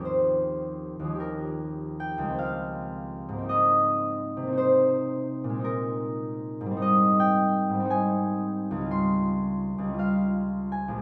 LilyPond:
\new Staff \with { instrumentName = "Harp" } { \time 6/8 \key ees \mixolydian \tempo 4. = 55 << { <c'' ees'' f''>4. bes'4 g''8 | f''4. ees''4. | c''4. bes'4. | \key aes \major ees''8 g''4 aes''4. |
c'''4. f''4 aes''8 | } \\ { <ees, f c' des' g' bes'>4. <ees, f des' g'>4. | <des, aes c' g'>4. <aes, bes c' ees'>4. | <c bes c' ees'>4. <bes, aes c' ees'>4. | <aes, g c' ees'>4. <aes, g c' ees'>4. |
<des, g des' f'>4. <des, g des' f'>4. | } >> }